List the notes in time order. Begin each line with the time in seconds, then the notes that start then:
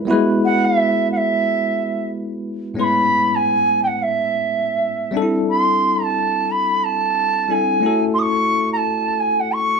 0.05 G3 B3 E4
0.10 G#3 F#4 B4
0.45 F#5
0.65 E5
1.12 F#5
1.17 E5
2.74 A2 G#3 B3 C#4
2.79 E4 B4 C6
2.84 B5
3.35 G#5
3.83 F#5 G5
4.03 E5
5.11 G3 C4 D4
5.15 D#4 A4
5.22 E4
5.50 C6
6.04 A5
6.51 B5
6.84 A5
7.49 G3 C4 D4 E4 A4 G#5
7.80 A3 C#4 E4
7.85 F#4 A4
8.14 C6
8.19 C#6 D#6
8.73 A#5
8.77 A5
9.20 G#5
9.40 F#5
9.54 C#6